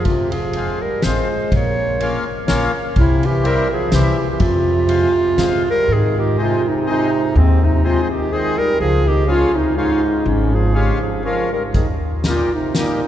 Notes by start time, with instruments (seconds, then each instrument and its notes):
0.05 upright bass F1, euphonium C3, clarinet F4, kick, ride
0.31 euphonium F3, clarinet G#4, ride
0.53 accordion G#3 C4 F4, ride
0.82 euphonium G3, clarinet A#4
1.02 upright bass A1, euphonium G#3, accordion G#3 C4 F4, clarinet C5, snare, ride
1.52 upright bass A#1, euphonium A#3, clarinet C#5, kick, ride
2.00 accordion A#3 C#4 F4, ride
2.47 upright bass A#1, accordion A#3 C#4 F4, snare, ride
2.96 upright bass C2, euphonium C3, clarinet E4, kick, ride
3.23 euphonium E3, clarinet G4, ride
3.43 accordion G3 C4 E4, euphonium G3, clarinet A#4, ride
3.72 euphonium F3, clarinet G#4
3.92 upright bass C2, euphonium E3, accordion G3 C4 E4, clarinet G4, snare, ride
4.31 euphonium E3, clarinet G4
4.40 upright bass F2, euphonium C3, clarinet F4, kick, ride
4.88 accordion G#3 C4 F4, ride
5.37 upright bass G2, accordion G#3 C4 F4, snare, ride
5.69 euphonium G3, clarinet A#4
5.88 upright bass G#2, euphonium D#3
5.93 clarinet G#4
6.16 euphonium D#3, clarinet G4
6.37 euphonium C3, accordion G#3 C4 D#4
6.43 clarinet F4
6.67 euphonium C3, clarinet D#4
6.86 euphonium C3, accordion G#3 C4 D#4, clarinet D#4
7.35 upright bass D#2, euphonium G#2, clarinet C4
7.64 euphonium C3, clarinet D#4
7.84 euphonium C3, accordion G#3 C4 D#4, clarinet F4
8.02 euphonium F3, clarinet G#4
8.11 euphonium D#3, clarinet G4
8.31 euphonium D#3, accordion G#3 C4 D#4, clarinet G#4
8.58 euphonium G3, clarinet A#4
8.80 upright bass C#2, euphonium F3, clarinet G#4
9.07 euphonium D#3, clarinet G4
9.27 euphonium C#3, accordion G#3 C#4 F4
9.31 clarinet F4
9.54 euphonium C3, clarinet D#4
9.76 euphonium G#2, accordion G#3 C#4 F4, clarinet D#4
10.25 upright bass G#1, euphonium G#2, clarinet C#4
10.51 euphonium F3
10.55 clarinet G#4
10.74 euphonium C#3, accordion G#3 C#4 F4, clarinet G4
11.00 euphonium F3, clarinet G#4
11.24 euphonium F3, accordion G#3 C#4 F4, clarinet A#4
11.52 euphonium G3, clarinet A#4
11.74 upright bass D#2, euphonium D#3, clarinet G#4, kick, closed hi-hat
12.23 accordion G3 A#3 D#4, snare, closed hi-hat
12.28 euphonium A#2, clarinet F4
12.53 euphonium C3, clarinet D#4
12.75 euphonium A#2, accordion G3 A#3 D#4, clarinet D#4, snare, closed hi-hat